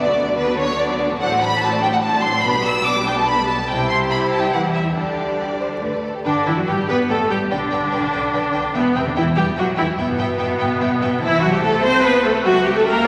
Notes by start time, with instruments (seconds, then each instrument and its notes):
Already playing: double bass section D2, cello section D3, violin section D5
0.06 viola section F#3 B3, violin section F#4 D5
0.16 viola section B3 D4, violin section D4 B4
0.26 viola section F#3 B3, violin section F#4 D5
0.36 viola section B3 D4, violin section D4 B4
0.47 viola section F#3 B3, violin section F#4 D5
0.57 viola section B3 D4, violin section D4 B4 C#5
0.67 viola section F#3 B3, violin section F#4 D5
0.77 viola section B3 D4, violin section D4 B4 D5
0.89 viola section F#3 B3, violin section F#4 D5
0.99 viola section B3 D4, violin section D4 B4
1.09 viola section F#3 B3, violin section F#4 D5
1.20 double bass section A1, cello section A2, viola section F#3 D4, violin section A4 C5 F#5
1.30 viola section A3 C4, violin section F#4 D5
1.40 viola section F#3 D4, violin section A4 C5 B5
1.51 viola section A3 C4, violin section F#4 D5
1.60 viola section F#3 D4, violin section A4 C5 A5
1.71 viola section A3 C4, violin section F#4 D5
1.81 viola section F#3 D4, violin section A4 C5 G5
1.91 viola section A3 C4, violin section F#4 D5 F#5
2.02 viola section F#3 D4, violin section A4 C5 A5
2.12 viola section A3 C4, violin section F#4 D5
2.23 viola section F#3 D4, violin section A4 C5 C6
2.33 viola section A3 C4, violin section F#4 D5
2.44 double bass section B1, cello section B2, viola section B3 D4, violin section B4 D5 B5
2.55 viola section G3 B3, violin section G4 B4
2.65 viola section B3 D4, violin section B4 D5 E6
2.75 viola section G3 B3, violin section G4 B4
2.85 viola section B3 D4, violin section B4 D5 D6
2.96 viola section G3 B3, violin section G4 B4
3.06 viola section B3 D4, violin section B4 D5 G5
3.16 viola section G3 B3, violin section G4 B4 A5
3.26 viola section B3 D4, violin section B4 D5 B5
3.37 viola section G3 B3, violin section G4 B4
3.47 viola section B3 D4, violin section B4 D5 A5
3.57 viola section G3 B3, violin section G4 B4
3.67 double bass section C2, cello section C3, viola section G3 E4, violin section G4 C5 G5
3.90 violin section C6
4.11 violin section B5
4.33 violin section A5
4.44 violin section G5
4.52 double bass section E2, cello section E3, violin section B4 F#5
4.75 violin section E5
4.95 double bass section D2, cello section D3, viola section G3 D4, violin section G4 A4 D5
5.39 violin section G4
5.60 violin section C5
5.82 double bass section D2, cello section D3, viola section A3 D4, violin section B4
6.04 violin section A4
6.15 violin section G4
6.24 double bass section G1, cello section D3, viola section D4, violin section B4 D5 G5
6.45 double bass section G1, cello section E3, viola section E4, violin section B4 D5 G5
6.57 cello section F#3, viola section F#4
6.66 double bass section G1, cello section G3, viola section G4, violin section B4 D5 G5
6.88 double bass section G1, cello section B3, violin section B4 D5 G5, viola section B4
7.09 double bass section G1, cello section A3, viola section A4, violin section B4 D5 G5
7.29 double bass section G1, cello section G3, viola section G4, violin section B4 D5 G5
7.51 double bass section B1, cello section D3, viola section D4, violin section B4 D5 G5
7.71 double bass section B1, violin section B4 D5 G5
7.92 double bass section B1, violin section B4 D5 G5
8.12 double bass section B1, violin section B4 D5 G5
8.34 double bass section B1, violin section B4 D5 G5
8.54 double bass section B1, violin section B4 D5 G5
8.74 double bass section E1, cello section B2, viola section B3, violin section B4 E5 G5
8.95 double bass section E1, cello section C3, viola section C4, violin section B4 E5 G5
9.05 cello section D3, viola section D4
9.16 double bass section E1, cello section E3, viola section E4, violin section B4 E5 G5
9.36 double bass section E1, cello section G3, viola section G4, violin section B4 E5 G5
9.57 double bass section E1, cello section F#3, viola section F#4, violin section B4 E5 G5
9.77 double bass section E1, cello section E3, viola section E4, violin section B4 E5 G5
9.98 double bass section G1, cello section B2, viola section B3, violin section B4 E5 G5
10.18 double bass section G1, violin section B4 E5 G5
10.38 double bass section G1, violin section B4 E5 G5
10.59 double bass section G1, violin section B4 E5 G5
10.80 double bass section G1, violin section B4 E5 G5
11.01 double bass section G1, violin section B4 E5 G5
11.21 double bass section C2, cello section E3, viola section E4, violin section C5 E5 A5
11.41 cello section F#3, viola section F#4
11.52 cello section G3, viola section G4
11.61 cello section A3, viola section A4
11.82 cello section C4, viola section C5
12.02 cello section B3, viola section B4
12.24 cello section A3, viola section A4
12.44 double bass section C#2, cello section F#3, viola section F#4, violin section E5 G5
12.65 cello section G3, viola section G4
12.76 cello section A3, viola section A4
12.86 cello section A#3, viola section A#4